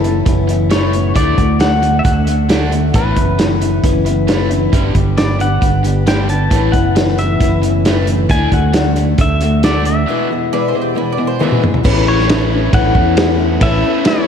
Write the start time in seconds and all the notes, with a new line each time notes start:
Already playing: F#1 A4
0.04 A2 E3 B3 C#4 E4, closed hi-hat
0.25 F#1 A2 E3 B3 C#4 E4, kick, closed hi-hat
0.47 A2 E3 C#4 E4, closed hi-hat
0.52 B3
0.71 A2 E3 A3 B3 C#4 E4 C#5, snare, closed hi-hat
0.93 A2 E3 B3 C#4 E4, closed hi-hat
1.15 D2 D3 A3 D4 F#4 D5, kick, closed hi-hat
1.38 D2 D3 A3 D4 F#4, kick, closed hi-hat
1.59 D3 A3 D4 F#4 F#5, snare, closed hi-hat
1.82 D3 A3 D4 F#4, closed hi-hat
1.99 E5
2.03 D2 D3 A3 D4 F#4 F#5, kick, closed hi-hat
2.26 D3 A3 D4 F#4, closed hi-hat
2.49 D3 A3 D4 F#4, snare, closed hi-hat
2.71 D3 A3 D4 F#4, closed hi-hat
2.94 A1 A2 E3 A3 B3 C#4 E4 B4, kick, closed hi-hat
3.16 F#1 A2 E3 B3 C#4 E4, kick, closed hi-hat
3.39 A2 E3 B3 C#4 E4, snare, closed hi-hat
3.61 A2 E3 B3 C#4 E4, closed hi-hat
3.84 F#1 A2 E3 B3 C#4 E4, kick, closed hi-hat
4.06 A2 E3 B3 C#4 E4, closed hi-hat
4.28 A2 E3 A3 B3 C#4 E4, snare, closed hi-hat
4.50 A2 E3 B3 C#4 E4, closed hi-hat
4.73 G1 G2 D3 G3 B3 D4 G4, kick, closed hi-hat
4.94 G1 G2 D3 G3 B3 D4 G4, kick, closed hi-hat
5.18 G2 D3 G3 B3 D4 G4 D5, snare, closed hi-hat
5.39 G2 D3 G3 B3 D4 G4 F#5, closed hi-hat
5.61 G1 G2 D3 G3 B3 D4 G4, kick, closed hi-hat
5.83 G2 D3 G3 B3 D4 G4, closed hi-hat
6.07 G2 D3 G3 B3 D4 G4 G5, snare, closed hi-hat
6.28 G2 D3 G3 B3 D4 G4 A5, closed hi-hat
6.51 A1 A2 E3 A3 B3 C#4 E4, kick, closed hi-hat
6.72 F#1 A2 E3 B3 C#4 E4 F#5, kick, closed hi-hat
6.96 A2 E3 B3 C#4 E4, snare, closed hi-hat
7.08 snare
7.18 A2 E3 B3 C#4 E4 E5, closed hi-hat
7.40 F#1 A2 E3 B3 C#4 E4, kick, closed hi-hat
7.62 A2 E3 C#4 E4, closed hi-hat
7.67 B3
7.85 A2 E3 A3 B3 C#4 E4, snare, closed hi-hat
8.07 A2 E3 B3 C#4 E4, closed hi-hat
8.29 D2 D3 A3 D4 F#4 G#5, kick, closed hi-hat
8.52 D2 D3 A3 D4 F#4 F#5, kick, closed hi-hat
8.73 D3 A3 D4 F#4, snare, closed hi-hat
8.96 D3 A3 D4 F#4, closed hi-hat
9.18 D2 D3 A3 D4 F#4 E5, kick, closed hi-hat
9.41 D3 A3 D4 F#4, closed hi-hat
9.63 D3 A3 D4 F#4 D5, snare, closed hi-hat
9.85 D3 A3 D4 F#4 E5, closed hi-hat
10.08 E2 B2 E3 G#3 B3 G#4
10.30 E2 B2 E3 G#3 B3 G#4
10.53 E2 B2 E3 G#3 B3 G#4 D5
10.68 C5
10.72 E2 B2 E3 G#3 B3 G#4
10.81 G4
10.87 D5
10.95 E2 B2 E3 G#3 B3 E4 G#4
11.12 D5
11.17 E2 B2 E3 G#3 B3 G#4
11.27 C5
11.39 E2 B2 E3 G#3 B3 G#4 E5, high tom
11.52 mid tom
11.62 E2 B2 E3 G#3 B3 G#4, mid tom
11.74 floor tom
11.84 A1 A2 E3 A3 B3 C#4 E4 A4 B4, kick, crash
12.06 B3 C#4 E4 C#5
12.19 snare
12.28 E3 B3 C#4 E4, snare, ride bell
12.50 B3 C#4 E4
12.73 A1 A2 E3 B3 C#4 E4 F#5, kick, ride bell
12.94 E2 B3 C#4 E4, kick
13.17 E3 B3 C#4 E4, snare, ride bell
13.39 B3 C#4 E4
13.61 A1 A2 E3 A3 B3 C#4 E4 E5, kick, ride bell
13.84 B3 C#4 E4
14.05 E3 B3 C#4 E4 C#5, snare, ride bell